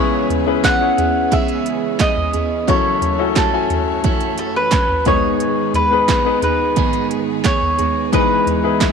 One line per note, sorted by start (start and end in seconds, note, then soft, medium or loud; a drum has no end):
0.00 2.64 C#2 medium
0.00 0.64 C#3 medium
0.00 2.64 C#3 medium
0.00 2.64 E3 medium
0.00 0.62 G#3 medium
0.00 0.63 B3 medium
0.00 2.64 B3 medium
0.00 0.33 C#4 medium
0.00 5.02 C#4 medium
0.00 0.33 E4 medium
0.00 0.65 E4 medium
0.00 0.34 G#4 medium
0.00 0.65 G#4 medium
0.00 2.64 G#4 medium
0.00 0.34 B4 medium
0.00 2.64 B4 medium
0.00 0.27 C#5 medium
0.30 closed hi-hat medium
0.30 floor tom medium
0.46 0.72 C#4 medium
0.46 0.72 E4 medium
0.46 0.72 G#4 medium
0.46 0.72 B4 medium
0.63 0.97 G#3 medium
0.63 0.98 B3 medium
0.63 0.98 E4 medium
0.63 0.96 G#4 medium
0.63 1.34 F#5 loud
0.63 kick loud
0.63 snare loud
0.63 clap medium
0.63 closed hi-hat medium
0.80 1.81 C#4 medium
0.80 1.81 E4 medium
0.80 1.82 G#4 medium
0.80 1.82 C#5 medium
0.97 1.31 B3 soft
0.97 1.32 E4 soft
0.97 1.32 G#4 medium
0.97 closed hi-hat medium
0.97 floor tom medium
1.31 2.00 C#3 medium
1.31 1.98 G#3 medium
1.31 1.99 B3 loud
1.31 2.01 E4 medium
1.31 2.01 G#4 loud
1.31 2.00 E5 loud
1.31 kick loud
1.31 closed hi-hat medium
1.48 closed hi-hat soft
1.66 closed hi-hat medium
1.99 2.34 G#3 medium
1.99 2.34 B3 medium
1.99 2.34 E4 medium
1.99 2.32 G#4 medium
1.99 2.69 D#5 medium
1.99 kick loud
1.99 snare loud
1.99 clap medium
1.99 closed hi-hat loud
2.17 floor tom medium
2.33 2.68 B3 soft
2.33 2.68 E4 medium
2.33 2.68 G#4 soft
2.33 closed hi-hat medium
2.33 floor tom medium
2.67 5.02 F#1 medium
2.67 5.03 F#2 medium
2.67 5.04 E3 medium
2.67 3.34 F#3 medium
2.67 5.04 A3 medium
2.67 3.06 C#4 medium
2.67 3.35 C#4 medium
2.67 3.06 E4 medium
2.67 3.36 E4 loud
2.67 5.04 F#4 medium
2.67 3.06 F#4 medium
2.67 3.06 A4 medium
2.67 3.37 A4 medium
2.67 5.04 C#5 medium
2.67 3.33 C#5 medium
2.67 kick medium
2.67 closed hi-hat medium
3.01 closed hi-hat medium
3.01 floor tom medium
3.19 3.44 C#4 medium
3.19 3.44 E4 medium
3.19 3.45 F#4 medium
3.19 3.45 A4 medium
3.36 4.03 F#3 medium
3.36 4.04 C#4 medium
3.36 4.04 E4 medium
3.36 4.35 A4 medium
3.36 4.05 A4 medium
3.36 kick loud
3.36 snare loud
3.36 clap medium
3.36 closed hi-hat medium
3.53 4.54 C#4 medium
3.53 4.54 E4 medium
3.53 4.54 F#4 medium
3.53 4.55 G#5 medium
3.70 closed hi-hat medium
3.70 floor tom medium
4.04 4.70 F#3 medium
4.04 4.71 C#4 medium
4.04 4.72 E4 medium
4.04 4.73 A4 medium
4.04 kick loud
4.04 closed hi-hat medium
4.20 closed hi-hat soft
4.38 4.56 A4 medium
4.38 closed hi-hat medium
4.56 5.07 B4 medium
4.71 5.06 F#3 medium
4.71 5.06 C#4 medium
4.71 5.06 E4 medium
4.71 5.06 A4 medium
4.71 kick loud
4.71 snare loud
4.71 clap loud
4.71 closed hi-hat loud
4.89 floor tom medium
5.05 7.75 G#1 medium
5.05 7.75 G#2 medium
5.05 6.09 G#2 medium
5.05 8.10 D#3 medium
5.05 6.76 D#3 medium
5.05 8.10 G#3 medium
5.05 6.08 G#3 medium
5.05 5.74 B3 medium
5.05 8.10 B3 medium
5.05 6.09 B3 medium
5.05 6.10 D#4 medium
5.05 5.75 D#4 medium
5.05 6.11 G#4 medium
5.05 8.92 G#4 medium
5.05 5.75 G#4 medium
5.05 8.92 B4 medium
5.05 5.75 B4 medium
5.05 5.75 C#5 medium
5.05 kick medium
5.05 closed hi-hat medium
5.05 floor tom medium
5.40 closed hi-hat medium
5.74 6.39 B4 medium
5.74 closed hi-hat medium
5.74 floor tom medium
5.91 6.16 B3 medium
5.91 6.17 D#4 medium
5.91 6.17 G#4 medium
5.91 6.17 B4 medium
6.08 6.42 G#3 medium
6.08 6.43 B3 medium
6.08 6.42 D#4 medium
6.08 6.41 G#4 medium
6.08 kick loud
6.08 snare loud
6.08 clap medium
6.08 closed hi-hat loud
6.25 7.26 B3 medium
6.25 7.26 D#4 medium
6.25 7.27 G#4 medium
6.25 7.27 B4 medium
6.42 6.76 G#3 soft
6.42 6.76 B3 soft
6.42 6.77 D#4 soft
6.42 6.76 G#4 medium
6.42 7.07 B4 medium
6.42 closed hi-hat medium
6.42 floor tom medium
6.76 7.45 G#2 medium
6.76 8.12 D#3 medium
6.76 7.44 G#3 medium
6.76 7.45 B3 medium
6.76 7.46 D#4 loud
6.76 7.47 G#4 loud
6.76 kick loud
6.76 closed hi-hat medium
6.93 closed hi-hat soft
7.11 closed hi-hat medium
7.44 7.79 G#3 medium
7.44 7.79 B3 medium
7.44 7.78 D#4 medium
7.44 7.77 G#4 medium
7.44 8.09 C#5 loud
7.44 kick loud
7.44 snare loud
7.44 clap medium
7.44 closed hi-hat loud
7.62 floor tom medium
7.78 8.12 G#3 soft
7.78 8.12 B3 soft
7.78 8.13 D#4 medium
7.78 8.13 G#4 medium
7.78 closed hi-hat medium
7.78 floor tom medium
8.12 8.92 G#1 medium
8.12 8.81 G#2 medium
8.12 8.92 G#2 medium
8.12 8.50 E3 medium
8.12 8.85 E3 medium
8.12 8.92 E3 medium
8.12 8.80 G#3 loud
8.12 8.92 B3 medium
8.12 8.81 B3 medium
8.12 8.50 D#4 medium
8.12 8.92 D#4 medium
8.12 8.81 D#4 medium
8.12 8.51 G#4 medium
8.12 8.82 G#4 medium
8.12 8.51 B4 medium
8.12 8.92 B4 medium
8.12 kick medium
8.12 closed hi-hat medium
8.47 closed hi-hat medium
8.47 floor tom medium
8.63 8.89 D#4 medium
8.63 8.89 E4 medium
8.63 8.89 G#4 medium
8.63 8.90 B4 medium
8.80 8.92 G#3 medium
8.80 8.92 B3 medium
8.80 8.92 D#4 medium
8.80 8.92 G#4 medium
8.80 kick loud
8.80 snare loud
8.80 clap medium
8.80 closed hi-hat medium